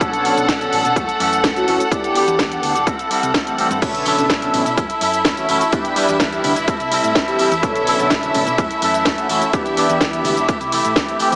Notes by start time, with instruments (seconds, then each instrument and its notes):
Already playing: violin section A4 F#5
0.00 fingered electric bass B1, analog polysynth D3 B3 A4 C#5, clean electric guitar F#3 C#4 D4 A4, kick, closed hi-hat, shaker
0.12 clean electric guitar C#4 D4 A4, closed hi-hat, shaker
0.24 clean electric guitar F#3 C#4 D4 A4, open hi-hat
0.37 fingered electric bass B1, analog polysynth D3 B3 C#4 A4, closed hi-hat, shaker
0.48 clean electric guitar F#3 C#4 D4 A4, kick, snare, closed hi-hat, shaker
0.61 analog polysynth D3 B3 C#4 A4, closed hi-hat, shaker
0.72 fingered electric bass A1, analog polysynth D3 B3 C#4 A4, open hi-hat
0.84 fingered electric bass B2, clean electric guitar C#4 D4 A4, closed hi-hat, shaker
0.96 fingered electric bass F#2, clean electric guitar E3 A3 C#4 A4, kick, closed hi-hat, shaker
1.08 clean electric guitar A3 C#4 A4, closed hi-hat, shaker
1.19 fingered electric bass F#2, clean electric guitar E3 A3 C#4 A4, open hi-hat
1.33 closed hi-hat, shaker
1.43 clean electric guitar E3 A3 C#4 A4, kick, snare, closed hi-hat, shaker
1.56 analog polysynth E3 A3 C#4 F#4, closed hi-hat, shaker
1.67 fingered electric bass F#1, clean electric guitar E3 A3 C#4 A4, analog polysynth E3 A3 C#4 F#4, open hi-hat
1.79 clean electric guitar A3 C#4 A4, closed hi-hat, shaker
1.91 analog polysynth E3 B3 D4 G4, clean electric guitar B3 D4 G4, kick, closed hi-hat, shaker
2.03 clean electric guitar D4 G4, closed hi-hat, shaker
2.14 clean electric guitar B3 D4 G4, open hi-hat
2.27 fingered electric bass E2, analog polysynth E3 B3 D4 G4, closed hi-hat, shaker
2.39 clean electric guitar B3 D4 G4, kick, snare, closed hi-hat, shaker
2.51 analog polysynth E3 B3 D4 G4, closed hi-hat, shaker
2.63 fingered electric bass D2, analog polysynth E3 B3 D4 G4, open hi-hat
2.75 fingered electric bass E1, clean electric guitar D4 G4, closed hi-hat, shaker
2.86 clean electric guitar G3 C4 E4 A4, kick, closed hi-hat, shaker
2.98 clean electric guitar C4 E4 A4, closed hi-hat, shaker
3.10 clean electric guitar G3 C4 E4 A4, open hi-hat
3.23 fingered electric bass C2, closed hi-hat, shaker
3.34 clean electric guitar C4 E4 A4, kick, snare, closed hi-hat, shaker
3.46 analog polysynth E3 A3 C4 G4, closed hi-hat, shaker
3.58 analog polysynth E3 A3 C4 G4, clean electric guitar G3 C4 E4 A4, muted fingered electric bass stroke, open hi-hat
3.70 fingered electric bass G2, clean electric guitar C4 E4 A4, closed hi-hat, shaker
3.81 fingered electric bass B1, analog polysynth D3 B3 A4 C#5, clean electric guitar F#3 C#4 D4 A4, violin section E4 E5, kick, closed hi-hat, crash, tambourine, shaker
3.94 clean electric guitar C#4 D4 A4, closed hi-hat, tambourine, shaker
4.05 clean electric guitar F#3 C#4 D4 A4, open hi-hat, tambourine
4.18 fingered electric bass B1, analog polysynth D3 B3 C#4 A4, closed hi-hat, tambourine, shaker
4.29 clean electric guitar F#3 C#4 D4 A4, kick, snare, closed hi-hat, tambourine, shaker
4.42 analog polysynth D3 B3 C#4 A4, closed hi-hat, tambourine, shaker
4.53 fingered electric bass A1, analog polysynth D3 B3 C#4 A4, open hi-hat, tambourine, high conga
4.65 fingered electric bass B2, clean electric guitar C#4 D4 A4, closed hi-hat, tambourine, shaker
4.77 fingered electric bass F#2, clean electric guitar C#4 E4 A4, kick, closed hi-hat, tambourine, shaker
4.89 clean electric guitar E4 A4, closed hi-hat, tambourine, shaker
5.00 fingered electric bass F#2, clean electric guitar C#4 E4 A4, open hi-hat, tambourine
5.13 closed hi-hat, tambourine, shaker
5.24 clean electric guitar C#4 E4 A4, kick, snare, closed hi-hat, shaker
5.37 analog polysynth E3 A3 C#4 F#4, closed hi-hat, tambourine, shaker
5.48 fingered electric bass F#1, analog polysynth E3 A3 C#4 F#4, clean electric guitar C#4 E4 A4, open hi-hat, tambourine
5.60 clean electric guitar E4 A4, closed hi-hat, tambourine, shaker
5.72 analog polysynth E3 B3 D4 G4, clean electric guitar G3 D4 E4 B4, kick, closed hi-hat, tambourine, shaker
5.84 clean electric guitar D4 E4 B4, closed hi-hat, tambourine, shaker
5.96 clean electric guitar G3 D4 E4 B4, open hi-hat, tambourine
6.08 fingered electric bass E2, analog polysynth E3 B3 D4 G4, closed hi-hat, tambourine, shaker
6.20 clean electric guitar G3 D4 E4 B4, kick, snare, closed hi-hat, tambourine, shaker
6.32 analog polysynth E3 B3 D4 G4, closed hi-hat, tambourine, shaker
6.44 fingered electric bass D2, analog polysynth E3 B3 D4 G4, open hi-hat, tambourine, high conga
6.56 fingered electric bass E1, clean electric guitar D4 E4 B4, closed hi-hat, tambourine, shaker
6.67 clean electric guitar G3 C4 E4 A4, kick, closed hi-hat, tambourine, shaker
6.79 fingered electric bass C2, clean electric guitar C4 E4 A4, closed hi-hat, tambourine, shaker
6.91 clean electric guitar G3 C4 E4 A4, open hi-hat, tambourine
7.04 fingered electric bass A2, closed hi-hat, tambourine, shaker
7.15 clean electric guitar G3 C4 E4 A4, kick, snare, closed hi-hat, tambourine, shaker
7.27 analog polysynth E3 A3 C4 G4, closed hi-hat, tambourine, shaker
7.39 analog polysynth E3 A3 C4 G4, clean electric guitar G3 C4 E4 A4, muted fingered electric bass stroke, open hi-hat, tambourine
7.51 fingered electric bass E2, clean electric guitar C4 E4 A4, closed hi-hat, tambourine, shaker
7.62 fingered electric bass B1, analog polysynth D3 B3 A4 C#5, clean electric guitar F#3 C#4 D4 A4, kick, closed hi-hat, tambourine, shaker
7.75 clean electric guitar C#4 D4 A4, closed hi-hat, tambourine, shaker
7.86 clean electric guitar F#3 C#4 D4 A4, open hi-hat, tambourine
7.99 fingered electric bass B1, analog polysynth D3 B3 C#4 A4, closed hi-hat, tambourine, shaker
8.10 clean electric guitar F#3 C#4 D4 A4, kick, snare, closed hi-hat, tambourine, shaker
8.23 analog polysynth D3 B3 C#4 A4, closed hi-hat, tambourine, shaker
8.34 fingered electric bass A1, analog polysynth D3 B3 C#4 A4, open hi-hat, tambourine, high conga
8.46 fingered electric bass B2, clean electric guitar C#4 D4 A4, closed hi-hat, tambourine, shaker
8.58 fingered electric bass F#2, clean electric guitar E3 A3 C#4 A4, kick, closed hi-hat, tambourine, shaker
8.70 clean electric guitar A3 C#4 A4, closed hi-hat, tambourine, shaker
8.81 fingered electric bass F#2, clean electric guitar E3 A3 C#4 A4, open hi-hat, tambourine
8.94 closed hi-hat, tambourine, shaker
9.05 clean electric guitar E3 A3 C#4 A4, kick, snare, closed hi-hat, tambourine, shaker
9.18 analog polysynth E3 A3 C#4 F#4, closed hi-hat, tambourine, shaker
9.29 fingered electric bass F#1, clean electric guitar E3 A3 C#4 A4, analog polysynth E3 A3 C#4 F#4, open hi-hat, tambourine
9.41 clean electric guitar A3 C#4 A4, closed hi-hat, tambourine, shaker
9.53 clean electric guitar E3 B3 D4 G4, analog polysynth E3 B3 D4 G4, kick, closed hi-hat, tambourine, shaker
9.65 clean electric guitar B3 D4 G4, closed hi-hat, tambourine, shaker
9.76 clean electric guitar E3 B3 D4 G4, open hi-hat, tambourine
9.89 fingered electric bass E2, analog polysynth E3 B3 D4 G4, closed hi-hat, tambourine, shaker
10.01 clean electric guitar B3 D4 G4, kick, snare, closed hi-hat, tambourine, shaker
10.13 analog polysynth E3 B3 D4 G4, closed hi-hat, tambourine, shaker
10.24 fingered electric bass D2, analog polysynth E3 B3 D4 G4, open hi-hat, tambourine, high conga
10.36 fingered electric bass E1, clean electric guitar B3 D4 G4, closed hi-hat, tambourine, shaker
10.48 clean electric guitar E3 A3 E4 G4, kick, closed hi-hat, tambourine, shaker
10.60 fingered electric bass C2, clean electric guitar A3 E4 G4, closed hi-hat, tambourine, shaker
10.72 clean electric guitar E3 A3 E4 G4, open hi-hat, tambourine
10.85 fingered electric bass A2, closed hi-hat, tambourine, shaker
10.96 clean electric guitar E3 A3 E4 G4, kick, snare, closed hi-hat, tambourine, shaker
11.08 analog polysynth E3 A3 C4 G4, closed hi-hat, tambourine, shaker
11.19 clean electric guitar E3 A3 E4 G4, analog polysynth E3 A3 C4 G4, muted fingered electric bass stroke, open hi-hat, tambourine
11.32 fingered electric bass E2, clean electric guitar G4, closed hi-hat, tambourine